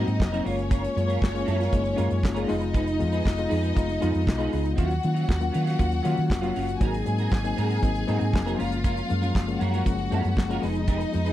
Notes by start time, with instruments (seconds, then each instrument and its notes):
Already playing: reed electric piano F#3 A#3 C4 D#4 F4 F#4, clean electric guitar C4, violin section D#4 D#5
0.07 fingered electric bass G#2, muted clean electric guitar stroke, closed hi-hat
0.19 fingered electric bass F1, muted clean electric guitar stroke, kick, snare, clap
0.32 reed electric piano F#3 A#3 C4 D#4, clean electric guitar C4 F#4 A#4, closed hi-hat
0.44 fingered electric bass F#1, reed electric piano G#3 A#3 C#4 F4, clean electric guitar C#4 F4 A#4, violin section C#4 C#5, open hi-hat
0.58 muted clean electric guitar stroke, closed hi-hat
0.70 clean electric guitar C#4 F4 A#4, kick, closed hi-hat
0.83 muted clean electric guitar stroke, closed hi-hat
0.96 fingered electric bass F#2, reed electric piano G#3 A#3 C#4 F4, muted clean electric guitar stroke, closed hi-hat
1.07 clean electric guitar C#4 F4 A#4, closed hi-hat
1.21 fingered electric bass F#1, muted clean electric guitar stroke, kick, snare, clap
1.33 reed electric piano G#3 A#3 C#4 F4, muted clean electric guitar stroke, closed hi-hat
1.45 fingered electric bass F#2, clean electric guitar C#4 F4 A#4, closed hi-hat
1.59 clean electric guitar C#4 F4 A#4, snare, closed hi-hat
1.72 fingered electric bass F#1, reed electric piano G#3 A#3 C#4 D#4, kick, closed hi-hat
1.83 muted clean electric guitar stroke, closed hi-hat
1.96 fingered electric bass F#2, reed electric piano G#3 A#3 C#4 F4, clean electric guitar C#4 F4 A#4, closed hi-hat
2.09 fingered electric bass F#2, muted clean electric guitar stroke, closed hi-hat
2.23 fingered electric bass F#1, muted clean electric guitar stroke, kick, snare, clap
2.35 reed electric piano G#3 A#3 C#4 G#4, clean electric guitar C#4 F4 A#4, closed hi-hat
2.48 fingered electric bass F1, reed electric piano G#3 B3 D#4 F4, clean electric guitar D#4 G#4 B4, violin section D#4 D#5, open hi-hat
2.61 muted clean electric guitar stroke, closed hi-hat
2.73 clean electric guitar D#4 G#4 B4, kick, closed hi-hat
2.87 muted clean electric guitar stroke, closed hi-hat
2.99 fingered electric bass F2, reed electric piano G#3 B3 D#4 F4, muted clean electric guitar stroke, closed hi-hat
3.12 clean electric guitar D#4 G#4 B4, closed hi-hat
3.25 fingered electric bass F1, muted clean electric guitar stroke, kick, snare, clap
3.37 reed electric piano G#3 B3 D#4 F4, muted clean electric guitar stroke, closed hi-hat
3.49 fingered electric bass F2, clean electric guitar D#4 G#4 B4, open hi-hat
3.62 clean electric guitar D#4 G#4 B4, closed hi-hat
3.75 fingered electric bass F1, reed electric piano G#3 B3 D#4 F4, kick, closed hi-hat
3.88 muted clean electric guitar stroke, closed hi-hat
4.00 fingered electric bass F2, reed electric piano G#3 B3 D#4 F4, clean electric guitar D#4 G#4 B4, closed hi-hat
4.13 fingered electric bass F2, muted clean electric guitar stroke, closed hi-hat
4.26 fingered electric bass B1, muted clean electric guitar stroke, kick, snare, clap
4.38 reed electric piano G#3 B3 D#4 F4, clean electric guitar D#4 G#4 B4, closed hi-hat
4.51 fingered electric bass C#2, clean electric guitar D#4 G#4 B4, open hi-hat
4.63 muted clean electric guitar stroke, closed hi-hat
4.76 fingered electric bass D#2, clean electric guitar F#3 C#4 F4, reed electric piano F#3 A#3 C#4 F4, violin section F#4 F#5, kick, closed hi-hat
4.90 muted clean electric guitar stroke, closed hi-hat
5.02 fingered electric bass D#3, reed electric piano F#3 A#3 C#4 F4, muted clean electric guitar stroke, closed hi-hat
5.14 clean electric guitar F#3 C#4 F4, closed hi-hat
5.26 fingered electric bass D#2, muted clean electric guitar stroke, kick
5.30 snare, clap
5.39 reed electric piano F#3 A#3 C#4 F4, muted clean electric guitar stroke, closed hi-hat
5.51 fingered electric bass D#3, clean electric guitar F#3 C#4 F4, closed hi-hat
5.64 clean electric guitar F#3 C#4 F4, closed hi-hat
5.68 snare
5.79 fingered electric bass D#2, reed electric piano F#3 A#3 C#4 F4, kick, closed hi-hat
5.91 muted clean electric guitar stroke, closed hi-hat
6.03 fingered electric bass D#3, clean electric guitar F#3 C#4 F4, reed electric piano F#3 A#3 C#4 F4, closed hi-hat
6.17 fingered electric bass D#3, muted clean electric guitar stroke, closed hi-hat
6.29 fingered electric bass F1, muted clean electric guitar stroke, kick, snare, clap
6.41 reed electric piano F#3 A#3 C#4 F4, clean electric guitar F#3 C#4 F4, closed hi-hat
6.55 fingered electric bass F#1, clean electric guitar F#3 C#4 F4, open hi-hat
6.68 muted clean electric guitar stroke, closed hi-hat
6.80 fingered electric bass G#1, reed electric piano F#3 A#3 C4 D#4, clean electric guitar C4 F#4 A#4, violin section G#4 G#5, kick, closed hi-hat
6.94 muted clean electric guitar stroke, closed hi-hat
7.05 fingered electric bass G#2, reed electric piano F#3 A#3 C4 D#4, muted clean electric guitar stroke, closed hi-hat
7.18 clean electric guitar C4 F#4 A#4, closed hi-hat
7.31 fingered electric bass G#1, muted clean electric guitar stroke, kick, snare, clap
7.43 reed electric piano F#3 A#3 C4 D#4, muted clean electric guitar stroke, closed hi-hat
7.56 fingered electric bass G#2, clean electric guitar C4 F#4 A#4, closed hi-hat
7.70 clean electric guitar C4 F#4 A#4, closed hi-hat
7.82 fingered electric bass G#1, reed electric piano F#3 A#3 C4 D#4, kick, closed hi-hat
7.95 muted clean electric guitar stroke, closed hi-hat
8.07 fingered electric bass G#2, reed electric piano F#3 A#3 C4 D#4, clean electric guitar C4 F#4 A#4, closed hi-hat
8.20 fingered electric bass G#2, muted clean electric guitar stroke, closed hi-hat
8.33 fingered electric bass F1, muted clean electric guitar stroke, kick, snare, clap
8.45 reed electric piano F#3 A#3 C4 D#4, clean electric guitar C4 F#4 A#4, closed hi-hat
8.57 fingered electric bass F#1, reed electric piano F3 G#3 A#3 C#4, clean electric guitar C#4 F4 A#4, violin section F4 F5, open hi-hat
8.72 muted clean electric guitar stroke, closed hi-hat
8.84 clean electric guitar C#4 F4 A#4, kick, closed hi-hat
8.97 muted clean electric guitar stroke, closed hi-hat
9.09 fingered electric bass F#2, reed electric piano F3 G#3 A#3 C#4, muted clean electric guitar stroke, closed hi-hat
9.22 clean electric guitar C#4 F4 A#4, closed hi-hat
9.35 fingered electric bass F#1, muted clean electric guitar stroke, kick, snare, clap
9.47 reed electric piano F3 G#3 A#3 C#4, muted clean electric guitar stroke, closed hi-hat
9.59 fingered electric bass F#2, clean electric guitar C#4 F4 A#4, violin section F#4 F#5, closed hi-hat
9.72 clean electric guitar C#4 F4 A#4, closed hi-hat
9.85 fingered electric bass F#1, reed electric piano F3 G#3 A#3 C#4, kick, closed hi-hat
9.98 muted clean electric guitar stroke, closed hi-hat
10.11 fingered electric bass F#2, reed electric piano F3 G#3 A#3 C#4, clean electric guitar C#4 F4 A#4, closed hi-hat
10.25 fingered electric bass F#2, muted clean electric guitar stroke, closed hi-hat
10.37 fingered electric bass F#1, muted clean electric guitar stroke, kick, snare, clap
10.49 reed electric piano F3 G#3 A#3 C#4, clean electric guitar C#4 F4 A#4, closed hi-hat
10.61 fingered electric bass F1, reed electric piano F3 G#3 B3 D#4, violin section D#4 D#5, clean electric guitar D#4 G#4 B4, open hi-hat
10.75 muted clean electric guitar stroke, closed hi-hat
10.87 clean electric guitar D#4 G#4 B4, kick, closed hi-hat
11.01 muted clean electric guitar stroke, closed hi-hat
11.12 fingered electric bass F2, reed electric piano F3 G#3 B3 D#4, muted clean electric guitar stroke, closed hi-hat
11.25 clean electric guitar D#4 G#4 B4, closed hi-hat